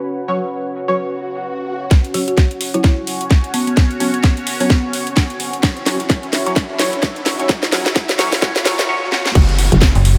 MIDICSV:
0, 0, Header, 1, 11, 480
1, 0, Start_track
1, 0, Tempo, 465116
1, 52, Time_signature, 4, 2, 24, 8
1, 10507, End_track
2, 0, Start_track
2, 0, Title_t, "Ambient pad"
2, 0, Program_c, 0, 92
2, 0, Note_on_c, 0, 66, 70
2, 0, Note_on_c, 0, 73, 79
2, 0, Note_on_c, 0, 78, 72
2, 9171, Note_off_c, 0, 73, 0
2, 9171, Note_off_c, 0, 78, 0
2, 9172, Note_off_c, 0, 66, 0
2, 9652, Note_on_c, 0, 66, 69
2, 9801, Note_on_c, 0, 73, 75
2, 9807, Note_on_c, 0, 78, 78
2, 10507, Note_off_c, 0, 66, 0
2, 10507, Note_off_c, 0, 73, 0
2, 10507, Note_off_c, 0, 78, 0
2, 10507, End_track
3, 0, Start_track
3, 0, Title_t, "Analog synth pad"
3, 0, Program_c, 1, 89
3, 0, Note_on_c, 1, 61, 72
3, 0, Note_on_c, 1, 66, 67
3, 0, Note_on_c, 1, 71, 80
3, 1932, Note_off_c, 1, 61, 0
3, 1932, Note_off_c, 1, 66, 0
3, 1960, Note_off_c, 1, 71, 0
3, 1971, Note_on_c, 1, 61, 75
3, 1971, Note_on_c, 1, 73, 81
3, 1972, Note_on_c, 1, 66, 69
3, 5774, Note_off_c, 1, 66, 0
3, 5813, Note_on_c, 1, 64, 71
3, 9130, Note_off_c, 1, 61, 0
3, 9130, Note_off_c, 1, 73, 0
3, 9139, Note_off_c, 1, 64, 0
3, 10507, End_track
4, 0, Start_track
4, 0, Title_t, "Synth stab"
4, 0, Program_c, 2, 62
4, 0, Note_on_c, 2, 54, 85
4, 0, Note_on_c, 2, 61, 76
4, 0, Note_on_c, 2, 73, 94
4, 267, Note_off_c, 2, 54, 0
4, 267, Note_off_c, 2, 61, 0
4, 267, Note_off_c, 2, 73, 0
4, 291, Note_on_c, 2, 54, 89
4, 291, Note_on_c, 2, 61, 82
4, 291, Note_on_c, 2, 73, 97
4, 395, Note_off_c, 2, 54, 0
4, 395, Note_off_c, 2, 61, 0
4, 395, Note_off_c, 2, 73, 0
4, 910, Note_on_c, 2, 54, 93
4, 910, Note_on_c, 2, 61, 86
4, 910, Note_on_c, 2, 73, 105
4, 985, Note_off_c, 2, 61, 0
4, 985, Note_off_c, 2, 73, 0
4, 986, Note_off_c, 2, 54, 0
4, 2210, Note_on_c, 2, 73, 87
4, 2211, Note_on_c, 2, 54, 79
4, 2211, Note_on_c, 2, 61, 74
4, 2315, Note_off_c, 2, 54, 0
4, 2315, Note_off_c, 2, 61, 0
4, 2315, Note_off_c, 2, 73, 0
4, 2830, Note_on_c, 2, 54, 86
4, 2830, Note_on_c, 2, 61, 77
4, 2830, Note_on_c, 2, 73, 92
4, 4107, Note_off_c, 2, 54, 0
4, 4107, Note_off_c, 2, 61, 0
4, 4107, Note_off_c, 2, 73, 0
4, 4130, Note_on_c, 2, 73, 101
4, 4131, Note_on_c, 2, 54, 86
4, 4131, Note_on_c, 2, 61, 81
4, 4235, Note_off_c, 2, 54, 0
4, 4235, Note_off_c, 2, 61, 0
4, 4235, Note_off_c, 2, 73, 0
4, 4750, Note_on_c, 2, 73, 104
4, 4751, Note_on_c, 2, 54, 98
4, 4751, Note_on_c, 2, 61, 91
4, 4826, Note_off_c, 2, 54, 0
4, 4826, Note_off_c, 2, 61, 0
4, 4826, Note_off_c, 2, 73, 0
4, 6050, Note_on_c, 2, 54, 75
4, 6050, Note_on_c, 2, 61, 70
4, 6051, Note_on_c, 2, 73, 85
4, 6155, Note_off_c, 2, 54, 0
4, 6155, Note_off_c, 2, 61, 0
4, 6155, Note_off_c, 2, 73, 0
4, 6671, Note_on_c, 2, 54, 80
4, 6671, Note_on_c, 2, 61, 76
4, 6671, Note_on_c, 2, 73, 89
4, 6756, Note_off_c, 2, 54, 0
4, 6756, Note_off_c, 2, 61, 0
4, 6756, Note_off_c, 2, 73, 0
4, 7011, Note_on_c, 2, 54, 81
4, 7011, Note_on_c, 2, 61, 73
4, 7011, Note_on_c, 2, 73, 90
4, 7115, Note_off_c, 2, 54, 0
4, 7115, Note_off_c, 2, 61, 0
4, 7115, Note_off_c, 2, 73, 0
4, 7631, Note_on_c, 2, 54, 80
4, 7631, Note_on_c, 2, 61, 73
4, 7631, Note_on_c, 2, 73, 84
4, 7716, Note_off_c, 2, 54, 0
4, 7716, Note_off_c, 2, 61, 0
4, 7716, Note_off_c, 2, 73, 0
4, 7972, Note_on_c, 2, 54, 84
4, 7972, Note_on_c, 2, 61, 75
4, 7972, Note_on_c, 2, 73, 88
4, 8076, Note_off_c, 2, 54, 0
4, 8076, Note_off_c, 2, 61, 0
4, 8076, Note_off_c, 2, 73, 0
4, 8451, Note_on_c, 2, 54, 83
4, 8451, Note_on_c, 2, 61, 76
4, 8451, Note_on_c, 2, 73, 92
4, 8555, Note_off_c, 2, 54, 0
4, 8555, Note_off_c, 2, 61, 0
4, 8555, Note_off_c, 2, 73, 0
4, 8692, Note_on_c, 2, 54, 86
4, 8692, Note_on_c, 2, 61, 76
4, 8692, Note_on_c, 2, 73, 92
4, 8796, Note_off_c, 2, 54, 0
4, 8796, Note_off_c, 2, 61, 0
4, 8796, Note_off_c, 2, 73, 0
4, 8932, Note_on_c, 2, 54, 88
4, 8932, Note_on_c, 2, 61, 82
4, 8932, Note_on_c, 2, 73, 97
4, 9036, Note_off_c, 2, 54, 0
4, 9036, Note_off_c, 2, 61, 0
4, 9036, Note_off_c, 2, 73, 0
4, 9171, Note_on_c, 2, 54, 87
4, 9171, Note_on_c, 2, 61, 83
4, 9172, Note_on_c, 2, 73, 94
4, 9276, Note_off_c, 2, 54, 0
4, 9276, Note_off_c, 2, 61, 0
4, 9276, Note_off_c, 2, 73, 0
4, 9411, Note_on_c, 2, 54, 88
4, 9411, Note_on_c, 2, 61, 83
4, 9411, Note_on_c, 2, 73, 98
4, 9515, Note_off_c, 2, 54, 0
4, 9515, Note_off_c, 2, 61, 0
4, 9515, Note_off_c, 2, 73, 0
4, 10507, End_track
5, 0, Start_track
5, 0, Title_t, "Marimba"
5, 0, Program_c, 3, 12
5, 2212, Note_on_c, 3, 66, 78
5, 2301, Note_off_c, 3, 66, 0
5, 2350, Note_on_c, 3, 66, 68
5, 2415, Note_off_c, 3, 66, 0
5, 2830, Note_on_c, 3, 64, 85
5, 2998, Note_off_c, 3, 64, 0
5, 3652, Note_on_c, 3, 59, 81
5, 3741, Note_off_c, 3, 59, 0
5, 3790, Note_on_c, 3, 59, 75
5, 3855, Note_off_c, 3, 59, 0
5, 4133, Note_on_c, 3, 59, 83
5, 4724, Note_off_c, 3, 59, 0
5, 4751, Note_on_c, 3, 59, 85
5, 4816, Note_off_c, 3, 59, 0
5, 4852, Note_on_c, 3, 59, 71
5, 4941, Note_off_c, 3, 59, 0
5, 10507, End_track
6, 0, Start_track
6, 0, Title_t, "FM bass"
6, 0, Program_c, 4, 39
6, 9652, Note_on_c, 4, 30, 97
6, 10009, Note_off_c, 4, 30, 0
6, 10032, Note_on_c, 4, 30, 94
6, 10249, Note_off_c, 4, 30, 0
6, 10507, End_track
7, 0, Start_track
7, 0, Title_t, "FM bass"
7, 0, Program_c, 5, 39
7, 10272, Note_on_c, 5, 30, 97
7, 10507, Note_off_c, 5, 30, 0
7, 10507, End_track
8, 0, Start_track
8, 0, Title_t, "Downlifter"
8, 0, Program_c, 6, 103
8, 9652, Note_on_c, 6, 60, 71
8, 10507, Note_off_c, 6, 60, 0
8, 10507, End_track
9, 0, Start_track
9, 0, Title_t, "Riser"
9, 0, Program_c, 7, 103
9, 1971, Note_on_c, 7, 60, 69
9, 9652, Note_off_c, 7, 60, 0
9, 10507, End_track
10, 0, Start_track
10, 0, Title_t, "Swell"
10, 0, Program_c, 8, 103
10, 1011, Note_on_c, 8, 60, 70
10, 1972, Note_off_c, 8, 60, 0
10, 10507, End_track
11, 0, Start_track
11, 0, Title_t, "Drums"
11, 1971, Note_on_c, 9, 36, 111
11, 1971, Note_on_c, 9, 38, 47
11, 1971, Note_on_c, 9, 42, 65
11, 2074, Note_off_c, 9, 38, 0
11, 2074, Note_off_c, 9, 42, 0
11, 2075, Note_off_c, 9, 36, 0
11, 2111, Note_on_c, 9, 42, 35
11, 2211, Note_on_c, 9, 46, 95
11, 2214, Note_off_c, 9, 42, 0
11, 2314, Note_off_c, 9, 46, 0
11, 2351, Note_on_c, 9, 42, 51
11, 2451, Note_off_c, 9, 42, 0
11, 2451, Note_on_c, 9, 36, 96
11, 2451, Note_on_c, 9, 38, 47
11, 2451, Note_on_c, 9, 42, 61
11, 2554, Note_off_c, 9, 38, 0
11, 2554, Note_off_c, 9, 42, 0
11, 2555, Note_off_c, 9, 36, 0
11, 2590, Note_on_c, 9, 42, 37
11, 2690, Note_on_c, 9, 46, 97
11, 2693, Note_off_c, 9, 42, 0
11, 2793, Note_off_c, 9, 46, 0
11, 2830, Note_on_c, 9, 42, 52
11, 2930, Note_off_c, 9, 42, 0
11, 2930, Note_on_c, 9, 38, 48
11, 2930, Note_on_c, 9, 42, 62
11, 2932, Note_on_c, 9, 36, 105
11, 3034, Note_off_c, 9, 38, 0
11, 3034, Note_off_c, 9, 42, 0
11, 3035, Note_off_c, 9, 36, 0
11, 3170, Note_on_c, 9, 46, 101
11, 3273, Note_off_c, 9, 46, 0
11, 3310, Note_on_c, 9, 42, 52
11, 3411, Note_off_c, 9, 42, 0
11, 3411, Note_on_c, 9, 38, 52
11, 3411, Note_on_c, 9, 42, 64
11, 3412, Note_on_c, 9, 36, 101
11, 3514, Note_off_c, 9, 38, 0
11, 3514, Note_off_c, 9, 42, 0
11, 3515, Note_off_c, 9, 36, 0
11, 3550, Note_on_c, 9, 42, 36
11, 3651, Note_on_c, 9, 46, 98
11, 3653, Note_off_c, 9, 42, 0
11, 3754, Note_off_c, 9, 46, 0
11, 3791, Note_on_c, 9, 42, 50
11, 3891, Note_off_c, 9, 42, 0
11, 3891, Note_on_c, 9, 38, 58
11, 3891, Note_on_c, 9, 42, 61
11, 3892, Note_on_c, 9, 36, 116
11, 3994, Note_off_c, 9, 38, 0
11, 3994, Note_off_c, 9, 42, 0
11, 3995, Note_off_c, 9, 36, 0
11, 4031, Note_on_c, 9, 42, 35
11, 4131, Note_on_c, 9, 46, 103
11, 4134, Note_off_c, 9, 42, 0
11, 4234, Note_off_c, 9, 46, 0
11, 4271, Note_on_c, 9, 42, 51
11, 4371, Note_off_c, 9, 42, 0
11, 4371, Note_on_c, 9, 38, 58
11, 4371, Note_on_c, 9, 42, 62
11, 4372, Note_on_c, 9, 36, 106
11, 4474, Note_off_c, 9, 38, 0
11, 4474, Note_off_c, 9, 42, 0
11, 4475, Note_off_c, 9, 36, 0
11, 4510, Note_on_c, 9, 42, 38
11, 4611, Note_on_c, 9, 46, 104
11, 4614, Note_off_c, 9, 42, 0
11, 4714, Note_off_c, 9, 46, 0
11, 4750, Note_on_c, 9, 46, 61
11, 4851, Note_on_c, 9, 38, 61
11, 4851, Note_on_c, 9, 42, 64
11, 4852, Note_on_c, 9, 36, 112
11, 4854, Note_off_c, 9, 46, 0
11, 4954, Note_off_c, 9, 38, 0
11, 4954, Note_off_c, 9, 42, 0
11, 4955, Note_off_c, 9, 36, 0
11, 5091, Note_on_c, 9, 46, 110
11, 5195, Note_off_c, 9, 46, 0
11, 5230, Note_on_c, 9, 42, 54
11, 5331, Note_off_c, 9, 42, 0
11, 5331, Note_on_c, 9, 38, 65
11, 5331, Note_on_c, 9, 42, 66
11, 5332, Note_on_c, 9, 36, 101
11, 5434, Note_off_c, 9, 38, 0
11, 5434, Note_off_c, 9, 42, 0
11, 5435, Note_off_c, 9, 36, 0
11, 5471, Note_on_c, 9, 42, 36
11, 5571, Note_on_c, 9, 46, 107
11, 5574, Note_off_c, 9, 42, 0
11, 5674, Note_off_c, 9, 46, 0
11, 5711, Note_on_c, 9, 42, 50
11, 5811, Note_off_c, 9, 42, 0
11, 5811, Note_on_c, 9, 38, 73
11, 5811, Note_on_c, 9, 42, 61
11, 5812, Note_on_c, 9, 36, 122
11, 5914, Note_off_c, 9, 38, 0
11, 5914, Note_off_c, 9, 42, 0
11, 5915, Note_off_c, 9, 36, 0
11, 5951, Note_on_c, 9, 42, 35
11, 6052, Note_on_c, 9, 38, 74
11, 6052, Note_on_c, 9, 46, 111
11, 6054, Note_off_c, 9, 42, 0
11, 6155, Note_off_c, 9, 38, 0
11, 6155, Note_off_c, 9, 46, 0
11, 6191, Note_on_c, 9, 42, 51
11, 6291, Note_off_c, 9, 42, 0
11, 6291, Note_on_c, 9, 38, 76
11, 6291, Note_on_c, 9, 42, 61
11, 6292, Note_on_c, 9, 36, 111
11, 6395, Note_off_c, 9, 36, 0
11, 6395, Note_off_c, 9, 38, 0
11, 6395, Note_off_c, 9, 42, 0
11, 6431, Note_on_c, 9, 42, 35
11, 6532, Note_on_c, 9, 38, 78
11, 6532, Note_on_c, 9, 46, 104
11, 6535, Note_off_c, 9, 42, 0
11, 6635, Note_off_c, 9, 38, 0
11, 6635, Note_off_c, 9, 46, 0
11, 6671, Note_on_c, 9, 42, 48
11, 6772, Note_off_c, 9, 42, 0
11, 6772, Note_on_c, 9, 36, 117
11, 6772, Note_on_c, 9, 38, 79
11, 6772, Note_on_c, 9, 42, 60
11, 6875, Note_off_c, 9, 36, 0
11, 6875, Note_off_c, 9, 38, 0
11, 6875, Note_off_c, 9, 42, 0
11, 7012, Note_on_c, 9, 38, 84
11, 7012, Note_on_c, 9, 46, 113
11, 7115, Note_off_c, 9, 38, 0
11, 7115, Note_off_c, 9, 46, 0
11, 7152, Note_on_c, 9, 42, 51
11, 7252, Note_off_c, 9, 42, 0
11, 7252, Note_on_c, 9, 36, 110
11, 7252, Note_on_c, 9, 38, 85
11, 7252, Note_on_c, 9, 42, 62
11, 7355, Note_off_c, 9, 36, 0
11, 7355, Note_off_c, 9, 38, 0
11, 7355, Note_off_c, 9, 42, 0
11, 7392, Note_on_c, 9, 42, 35
11, 7492, Note_on_c, 9, 38, 85
11, 7492, Note_on_c, 9, 46, 108
11, 7495, Note_off_c, 9, 42, 0
11, 7595, Note_off_c, 9, 38, 0
11, 7595, Note_off_c, 9, 46, 0
11, 7632, Note_on_c, 9, 42, 52
11, 7732, Note_off_c, 9, 42, 0
11, 7732, Note_on_c, 9, 36, 121
11, 7732, Note_on_c, 9, 38, 91
11, 7732, Note_on_c, 9, 42, 61
11, 7835, Note_off_c, 9, 36, 0
11, 7835, Note_off_c, 9, 38, 0
11, 7835, Note_off_c, 9, 42, 0
11, 7871, Note_on_c, 9, 38, 83
11, 7871, Note_on_c, 9, 42, 35
11, 7971, Note_off_c, 9, 38, 0
11, 7971, Note_on_c, 9, 38, 94
11, 7971, Note_on_c, 9, 46, 109
11, 7975, Note_off_c, 9, 42, 0
11, 8075, Note_off_c, 9, 38, 0
11, 8075, Note_off_c, 9, 46, 0
11, 8111, Note_on_c, 9, 38, 86
11, 8111, Note_on_c, 9, 42, 52
11, 8212, Note_off_c, 9, 38, 0
11, 8212, Note_off_c, 9, 42, 0
11, 8212, Note_on_c, 9, 36, 107
11, 8212, Note_on_c, 9, 38, 92
11, 8212, Note_on_c, 9, 42, 60
11, 8315, Note_off_c, 9, 36, 0
11, 8315, Note_off_c, 9, 38, 0
11, 8315, Note_off_c, 9, 42, 0
11, 8351, Note_on_c, 9, 38, 85
11, 8351, Note_on_c, 9, 42, 37
11, 8451, Note_off_c, 9, 38, 0
11, 8451, Note_on_c, 9, 38, 97
11, 8451, Note_on_c, 9, 46, 110
11, 8454, Note_off_c, 9, 42, 0
11, 8554, Note_off_c, 9, 38, 0
11, 8554, Note_off_c, 9, 46, 0
11, 8591, Note_on_c, 9, 38, 88
11, 8591, Note_on_c, 9, 46, 65
11, 8692, Note_off_c, 9, 38, 0
11, 8692, Note_on_c, 9, 36, 116
11, 8692, Note_on_c, 9, 38, 97
11, 8692, Note_on_c, 9, 42, 63
11, 8694, Note_off_c, 9, 46, 0
11, 8795, Note_off_c, 9, 36, 0
11, 8795, Note_off_c, 9, 38, 0
11, 8795, Note_off_c, 9, 42, 0
11, 8831, Note_on_c, 9, 38, 88
11, 8932, Note_off_c, 9, 38, 0
11, 8932, Note_on_c, 9, 38, 106
11, 8932, Note_on_c, 9, 46, 113
11, 9035, Note_off_c, 9, 38, 0
11, 9035, Note_off_c, 9, 46, 0
11, 9072, Note_on_c, 9, 38, 94
11, 9072, Note_on_c, 9, 42, 53
11, 9176, Note_off_c, 9, 38, 0
11, 9176, Note_off_c, 9, 42, 0
11, 9412, Note_on_c, 9, 38, 64
11, 9516, Note_off_c, 9, 38, 0
11, 9552, Note_on_c, 9, 38, 71
11, 9652, Note_on_c, 9, 36, 120
11, 9652, Note_on_c, 9, 42, 72
11, 9652, Note_on_c, 9, 49, 103
11, 9655, Note_off_c, 9, 38, 0
11, 9756, Note_off_c, 9, 36, 0
11, 9756, Note_off_c, 9, 42, 0
11, 9756, Note_off_c, 9, 49, 0
11, 9792, Note_on_c, 9, 42, 39
11, 9892, Note_on_c, 9, 46, 108
11, 9895, Note_off_c, 9, 42, 0
11, 9995, Note_off_c, 9, 46, 0
11, 10031, Note_on_c, 9, 42, 56
11, 10129, Note_on_c, 9, 38, 122
11, 10132, Note_off_c, 9, 42, 0
11, 10132, Note_on_c, 9, 36, 108
11, 10132, Note_on_c, 9, 42, 68
11, 10232, Note_off_c, 9, 38, 0
11, 10235, Note_off_c, 9, 36, 0
11, 10235, Note_off_c, 9, 42, 0
11, 10272, Note_on_c, 9, 46, 62
11, 10372, Note_off_c, 9, 46, 0
11, 10372, Note_on_c, 9, 46, 108
11, 10475, Note_off_c, 9, 46, 0
11, 10507, End_track
0, 0, End_of_file